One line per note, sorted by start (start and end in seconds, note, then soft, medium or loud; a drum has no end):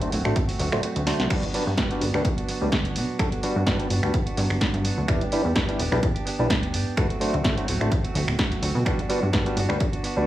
0.00 0.10 F#3 medium
0.00 0.11 A3 medium
0.00 0.09 A3 medium
0.00 0.12 C4 medium
0.00 0.10 D4 medium
0.00 0.13 F#4 medium
0.00 0.10 F#4 medium
0.00 0.10 C5 medium
0.00 closed hi-hat medium
0.11 0.22 D1 medium
0.11 0.25 F#3 medium
0.11 0.25 A3 medium
0.11 0.25 C4 medium
0.11 0.23 F#4 medium
0.11 open hi-hat loud
0.24 0.34 A1 medium
0.24 0.38 A3 medium
0.24 0.50 A3 soft
0.24 0.48 C4 medium
0.24 0.38 D4 medium
0.24 0.46 F#4 medium
0.24 0.38 F#4 medium
0.24 0.38 C5 medium
0.24 finger snap medium
0.36 kick loud
0.36 closed hi-hat medium
0.48 0.59 A3 medium
0.48 0.60 C4 medium
0.48 0.59 F#4 medium
0.48 open hi-hat medium
0.58 0.69 D2 loud
0.58 0.81 F#3 medium
0.58 0.82 A3 medium
0.58 0.83 C4 medium
0.58 0.83 F#4 medium
0.58 open hi-hat loud
0.72 0.81 D1 medium
0.72 0.80 A3 medium
0.72 0.80 D4 medium
0.72 0.80 F#4 medium
0.72 0.81 C5 medium
0.72 finger snap medium
0.82 1.04 F#3 medium
0.82 1.06 A3 medium
0.82 1.07 C4 medium
0.82 1.07 F#4 medium
0.82 closed hi-hat medium
0.96 1.14 D2 medium
0.96 closed hi-hat medium
1.06 1.28 F#3 medium
1.06 1.28 A3 medium
1.06 1.30 A3 medium
1.06 1.31 C4 medium
1.06 1.28 D4 medium
1.06 1.28 F#4 medium
1.06 1.31 F#4 medium
1.06 1.28 C5 loud
1.06 snare medium
1.06 open hi-hat loud
1.19 1.28 C2 medium
1.19 snare medium
1.19 closed hi-hat soft
1.30 1.40 G2 loud
1.30 1.52 F#3 medium
1.30 1.45 G3 medium
1.30 1.53 B3 medium
1.30 1.45 D4 medium
1.30 1.54 D4 medium
1.30 1.45 F#4 medium
1.30 1.55 F#4 medium
1.30 1.45 B4 loud
1.30 finger snap medium
1.30 kick loud
1.30 closed hi-hat medium
1.30 crash medium
1.43 closed hi-hat medium
1.53 1.76 F#3 medium
1.53 1.63 G3 medium
1.53 1.77 B3 medium
1.53 1.64 D4 medium
1.53 1.77 D4 medium
1.53 1.64 F#4 medium
1.53 1.78 F#4 medium
1.53 1.64 B4 loud
1.53 open hi-hat loud
1.67 1.75 G2 medium
1.77 1.99 F#3 medium
1.77 1.87 G3 medium
1.77 2.00 B3 medium
1.77 1.88 D4 medium
1.77 2.01 D4 medium
1.77 1.88 F#4 medium
1.77 2.02 F#4 medium
1.77 1.88 B4 medium
1.77 kick loud
1.77 snare loud
1.77 closed hi-hat medium
1.91 2.04 G3 medium
1.91 2.04 D4 medium
1.91 2.04 F#4 medium
1.91 2.04 B4 medium
1.91 closed hi-hat medium
2.00 2.11 G1 medium
2.00 2.14 F#3 medium
2.00 2.14 B3 medium
2.00 2.14 D4 medium
2.00 2.12 F#4 medium
2.00 open hi-hat loud
2.13 2.22 D2 medium
2.13 2.22 G3 medium
2.13 2.39 B3 medium
2.13 2.22 D4 medium
2.13 2.38 D4 medium
2.13 2.36 F#4 medium
2.13 2.22 F#4 medium
2.13 2.22 B4 loud
2.13 finger snap medium
2.25 2.35 G2 medium
2.25 kick loud
2.25 closed hi-hat medium
2.37 2.48 B3 medium
2.37 2.49 D4 medium
2.37 2.48 F#4 medium
2.37 closed hi-hat medium
2.48 2.70 F#3 medium
2.48 2.71 B3 medium
2.48 2.72 D4 medium
2.48 2.72 F#4 medium
2.48 open hi-hat loud
2.61 2.70 D2 medium
2.61 2.69 G3 medium
2.61 2.69 D4 medium
2.61 2.69 F#4 medium
2.61 2.70 B4 medium
2.72 2.97 D2 medium
2.72 2.94 F#3 medium
2.72 2.95 B3 medium
2.72 2.96 D4 medium
2.72 2.97 F#4 loud
2.72 kick loud
2.72 snare loud
2.72 closed hi-hat medium
2.85 closed hi-hat medium
2.95 3.06 B2 loud
2.95 3.17 F#3 medium
2.95 3.18 B3 medium
2.95 3.19 D4 medium
2.95 3.20 F#4 medium
2.95 open hi-hat loud
3.19 3.29 G2 loud
3.19 3.41 F#3 medium
3.19 3.29 G3 medium
3.19 3.42 B3 medium
3.19 3.29 D4 medium
3.19 3.43 D4 medium
3.19 3.29 F#4 medium
3.19 3.44 F#4 loud
3.19 3.29 A4 loud
3.19 finger snap medium
3.19 kick loud
3.19 closed hi-hat medium
3.32 closed hi-hat medium
3.42 3.65 F#3 medium
3.42 3.58 G3 medium
3.42 3.66 B3 medium
3.42 3.58 D4 medium
3.42 3.67 D4 medium
3.42 3.58 F#4 medium
3.42 3.67 F#4 medium
3.42 3.58 B4 medium
3.42 open hi-hat loud
3.56 3.64 G2 medium
3.66 3.89 F#3 medium
3.66 3.77 G3 medium
3.66 3.90 B3 medium
3.66 3.77 D4 medium
3.66 3.91 D4 medium
3.66 3.78 F#4 medium
3.66 3.91 F#4 loud
3.66 3.78 B4 loud
3.66 kick loud
3.66 snare loud
3.66 closed hi-hat medium
3.79 3.87 G3 medium
3.79 3.87 D4 medium
3.79 3.87 F#4 medium
3.79 3.88 B4 medium
3.79 closed hi-hat medium
3.90 4.00 G1 medium
3.90 4.03 F#3 medium
3.90 4.03 B3 medium
3.90 4.03 D4 medium
3.90 4.01 F#4 medium
3.90 open hi-hat loud
4.03 4.11 D2 medium
4.03 4.16 G3 medium
4.03 4.28 B3 soft
4.03 4.16 D4 medium
4.03 4.26 D4 medium
4.03 4.25 F#4 medium
4.03 4.16 F#4 medium
4.03 4.16 B4 medium
4.03 finger snap medium
4.14 kick loud
4.14 closed hi-hat medium
4.26 4.37 B3 medium
4.26 4.38 D4 medium
4.26 4.37 F#4 medium
4.26 closed hi-hat soft
4.37 4.47 G2 loud
4.37 4.59 F#3 medium
4.37 4.60 B3 medium
4.37 4.61 D4 medium
4.37 4.61 F#4 medium
4.37 open hi-hat loud
4.50 4.58 G1 medium
4.50 finger snap medium
4.60 4.83 F#3 medium
4.60 4.84 B3 medium
4.60 4.85 D4 medium
4.60 4.85 F#4 medium
4.60 kick loud
4.60 snare loud
4.60 closed hi-hat medium
4.74 4.92 G2 medium
4.74 closed hi-hat medium
4.84 5.08 F#3 medium
4.84 5.07 B3 medium
4.84 5.08 D4 medium
4.84 5.10 F#4 medium
4.84 open hi-hat loud
4.97 5.06 D2 medium
4.97 shaker soft
5.08 5.18 E2 loud
5.08 5.23 G3 medium
5.08 5.30 B3 medium
5.08 5.23 D4 medium
5.08 5.32 D4 medium
5.08 5.23 E4 medium
5.08 5.33 G4 medium
5.08 5.23 B4 loud
5.08 finger snap medium
5.08 kick loud
5.08 closed hi-hat medium
5.21 closed hi-hat soft
5.31 5.42 G3 medium
5.31 5.54 B3 medium
5.31 5.42 D4 medium
5.31 5.55 D4 medium
5.31 5.42 E4 medium
5.31 5.56 G4 medium
5.31 5.42 B4 loud
5.31 open hi-hat loud
5.44 5.53 E2 medium
5.44 shaker soft
5.55 5.65 G3 medium
5.55 5.77 B3 medium
5.55 5.65 D4 medium
5.55 5.79 D4 loud
5.55 5.66 E4 medium
5.55 5.80 G4 medium
5.55 5.66 B4 loud
5.55 kick loud
5.55 snare loud
5.55 closed hi-hat medium
5.68 5.81 G3 medium
5.68 5.81 D4 medium
5.68 5.82 E4 medium
5.68 5.82 B4 medium
5.68 closed hi-hat soft
5.78 5.89 E1 loud
5.78 5.92 B3 medium
5.78 5.93 D4 medium
5.78 5.90 G4 medium
5.78 open hi-hat loud
5.91 6.00 B1 medium
5.91 6.00 G3 medium
5.91 6.00 D4 medium
5.91 6.16 D4 medium
5.91 6.00 E4 medium
5.91 6.13 G4 medium
5.91 6.00 B4 loud
5.91 finger snap medium
6.03 6.13 E2 medium
6.03 kick loud
6.03 closed hi-hat medium
6.15 6.26 D4 medium
6.15 6.26 G4 medium
6.15 closed hi-hat medium
6.25 6.48 B3 medium
6.25 6.49 D4 medium
6.25 6.50 G4 medium
6.25 open hi-hat loud
6.39 6.48 B1 medium
6.39 6.47 G3 medium
6.39 6.47 D4 medium
6.39 6.47 E4 medium
6.39 6.48 B4 medium
6.39 shaker soft
6.49 6.75 D2 medium
6.49 6.71 B3 medium
6.49 6.73 D4 loud
6.49 6.74 G4 medium
6.49 kick loud
6.49 snare loud
6.49 closed hi-hat medium
6.63 closed hi-hat soft
6.73 6.84 G2 loud
6.73 6.97 B3 medium
6.73 6.97 D4 medium
6.73 6.98 G4 medium
6.73 open hi-hat loud
6.96 7.07 D2 loud
6.96 7.18 F#3 medium
6.96 7.07 A3 medium
6.96 7.20 A3 medium
6.96 7.21 C4 medium
6.96 7.07 D4 medium
6.96 7.07 F#4 medium
6.96 7.22 F#4 loud
6.96 7.07 B4 loud
6.96 finger snap medium
6.96 kick loud
6.96 closed hi-hat medium
7.10 closed hi-hat soft
7.10 shaker soft
7.20 7.42 F#3 medium
7.20 7.35 A3 medium
7.20 7.43 A3 medium
7.20 7.44 C4 medium
7.20 7.35 D4 medium
7.20 7.36 F#4 medium
7.20 7.45 F#4 medium
7.20 7.36 C5 medium
7.20 open hi-hat loud
7.34 7.42 D2 loud
7.34 closed hi-hat soft
7.34 shaker soft
7.44 7.66 F#3 medium
7.44 7.55 A3 loud
7.44 7.67 A3 medium
7.44 7.68 C4 medium
7.44 7.56 D4 medium
7.44 7.56 F#4 medium
7.44 7.69 F#4 medium
7.44 7.56 C5 loud
7.44 kick loud
7.44 snare loud
7.44 closed hi-hat medium
7.57 7.65 A3 medium
7.57 7.65 D4 medium
7.57 7.65 F#4 medium
7.57 7.66 C5 medium
7.57 closed hi-hat soft
7.67 7.78 D1 medium
7.67 7.80 F#3 medium
7.67 7.81 A3 medium
7.67 7.80 C4 medium
7.67 7.79 F#4 medium
7.67 open hi-hat loud
7.80 7.89 A1 medium
7.80 7.94 A3 medium
7.80 8.05 A3 medium
7.80 8.04 C4 medium
7.80 7.94 D4 medium
7.80 8.02 F#4 medium
7.80 7.94 F#4 medium
7.80 7.94 C5 medium
7.80 finger snap medium
7.80 closed hi-hat soft
7.92 kick loud
7.92 closed hi-hat medium
8.03 8.14 A3 soft
8.03 8.15 C4 medium
8.03 8.15 F#4 medium
8.03 closed hi-hat soft
8.14 8.25 D2 loud
8.14 8.37 F#3 medium
8.14 8.38 A3 medium
8.14 8.39 C4 medium
8.14 8.39 F#4 medium
8.14 open hi-hat loud
8.28 8.36 D1 medium
8.28 finger snap medium
8.38 8.58 D2 medium
8.38 8.60 F#3 medium
8.38 8.62 A3 medium
8.38 8.62 C4 loud
8.38 8.63 F#4 loud
8.38 kick loud
8.38 snare loud
8.38 closed hi-hat medium
8.52 closed hi-hat medium
8.61 8.72 D2 loud
8.61 8.86 F#3 medium
8.61 8.85 A3 medium
8.61 8.86 C4 medium
8.61 8.86 F#4 medium
8.61 open hi-hat loud
8.75 8.83 B2 loud
8.75 shaker soft
8.85 8.96 G2 loud
8.85 9.01 G3 medium
8.85 9.08 B3 medium
8.85 9.01 D4 medium
8.85 9.09 D4 medium
8.85 9.01 F#4 medium
8.85 9.11 F#4 medium
8.85 9.01 B4 loud
8.85 finger snap medium
8.85 kick loud
8.85 closed hi-hat medium
8.99 closed hi-hat soft
8.99 shaker soft
9.09 9.19 G3 medium
9.09 9.31 B3 medium
9.09 9.19 D4 medium
9.09 9.33 D4 medium
9.09 9.19 F#4 medium
9.09 9.34 F#4 medium
9.09 9.19 B4 loud
9.09 open hi-hat loud
9.09 shaker loud
9.23 9.31 G2 loud
9.23 shaker soft
9.33 9.43 G3 medium
9.33 9.55 B3 medium
9.33 9.43 D4 medium
9.33 9.57 D4 medium
9.33 9.43 F#4 medium
9.33 9.58 F#4 loud
9.33 9.43 B4 loud
9.33 kick loud
9.33 snare loud
9.33 closed hi-hat medium
9.46 9.59 G3 medium
9.46 9.59 D4 medium
9.46 9.59 F#4 medium
9.46 9.60 B4 medium
9.46 closed hi-hat soft
9.56 9.67 G1 loud
9.56 9.70 B3 medium
9.56 9.70 D4 medium
9.56 9.68 F#4 medium
9.56 open hi-hat loud
9.56 shaker medium
9.69 9.78 D2 medium
9.69 9.77 G3 loud
9.69 9.77 D4 medium
9.69 9.94 D4 soft
9.69 9.78 F#4 medium
9.69 9.78 B4 loud
9.69 finger snap medium
9.80 9.91 G2 medium
9.80 kick loud
9.80 closed hi-hat medium
9.92 10.04 D4 medium
9.92 10.04 F#4 medium
9.92 closed hi-hat soft
10.03 10.26 B3 medium
10.03 10.27 D4 medium
10.03 10.27 F#4 medium
10.03 open hi-hat loud
10.03 shaker medium
10.16 10.25 D2 medium
10.16 10.25 G3 medium
10.16 10.25 D4 medium
10.16 10.25 F#4 medium
10.16 10.25 B4 medium
10.16 shaker soft